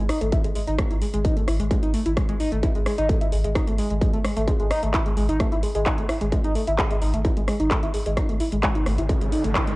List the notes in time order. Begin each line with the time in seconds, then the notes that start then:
0.09 D#4, cross-stick, open hi-hat
0.21 G#1 A3, closed hi-hat
0.32 E4, kick, closed hi-hat
0.44 G#1 G#3, closed hi-hat
0.55 G#3, open hi-hat
0.67 G#1 D#4, closed hi-hat
0.78 A3, kick, cross-stick, closed hi-hat
0.90 G#1 E4, closed hi-hat
1.01 G#3, open hi-hat
1.13 G#1 G#3, closed hi-hat
1.24 D#4, kick, closed hi-hat
1.37 A3, closed hi-hat
1.48 G#1 E4, cross-stick, open hi-hat
1.60 G#1 G#3, closed hi-hat
1.71 G#3, kick, closed hi-hat
1.83 G#1 D#4, closed hi-hat
1.94 A3, open hi-hat
2.06 G#1 E4, closed hi-hat
2.17 G#3, kick, cross-stick, closed hi-hat
2.29 G#1 G#3, closed hi-hat
2.40 D#4, open hi-hat
2.52 G#1 A3, closed hi-hat
2.63 E4, kick, closed hi-hat
2.75 G#1 G#3, closed hi-hat
2.86 G#3, cross-stick, open hi-hat
2.98 G#1 D#4, closed hi-hat
3.09 A3, kick, closed hi-hat
3.21 E4, closed hi-hat
3.32 G#1 G#3, open hi-hat
3.44 G#1 G#3, closed hi-hat
3.55 D#4, kick, cross-stick, closed hi-hat
3.67 G#1 A3, closed hi-hat
3.78 G#3, open hi-hat
3.90 G#1 G#3, closed hi-hat
4.01 G#3, kick, closed hi-hat
4.14 G#1 A3, closed hi-hat
4.25 G#3, cross-stick, open hi-hat
4.37 G#1 A3, closed hi-hat
4.48 G#3, kick, closed hi-hat
4.60 G#1 G#3, closed hi-hat
4.71 D#4, cross-stick, open hi-hat
4.83 G#1 A3, closed hi-hat
4.94 E4, kick, clap, closed hi-hat
5.06 G#3, closed hi-hat
5.17 G#1 G#3, open hi-hat
5.29 G#1 D#4, closed hi-hat
5.40 A3, kick, cross-stick, closed hi-hat
5.52 G#1 E4, closed hi-hat
5.63 G#3, open hi-hat
5.75 G#1 G#3, closed hi-hat
5.86 D#4, kick, clap, closed hi-hat
5.98 G#1 A3, closed hi-hat
6.09 E4, cross-stick, open hi-hat
6.21 G#1 G#3, closed hi-hat
6.32 G#3, kick, closed hi-hat
6.44 G#1 D#4, closed hi-hat
6.55 A3, open hi-hat
6.67 G#1 E4, closed hi-hat
6.78 G#3, kick, cross-stick, clap, closed hi-hat
6.90 G#3, closed hi-hat
7.01 G#1 D#4, open hi-hat
7.14 G#1 A3, closed hi-hat
7.25 E4, kick, closed hi-hat
7.37 G#1 G#3, closed hi-hat
7.48 G#3, cross-stick, open hi-hat
7.60 G#1 D#4, closed hi-hat
7.71 A3, kick, clap, closed hi-hat
7.83 G#1 E4, closed hi-hat
7.94 G#3, open hi-hat
8.06 G#1 G#3, closed hi-hat
8.17 D#4, kick, cross-stick, closed hi-hat, riser
8.29 G#1 A3, closed hi-hat
8.40 E4, open hi-hat
8.52 G#1 G#3, closed hi-hat
8.63 G#3, kick, clap, closed hi-hat
8.75 D#4, closed hi-hat
8.86 G#1 A3, cross-stick, open hi-hat
8.98 G#1 E4, closed hi-hat
9.09 G#3, kick, closed hi-hat
9.21 G#1 G#3, closed hi-hat
9.32 D#4, open hi-hat
9.44 G#1 A3, closed hi-hat
9.55 E4, kick, cross-stick, clap, closed hi-hat
9.67 G#1 G#3, closed hi-hat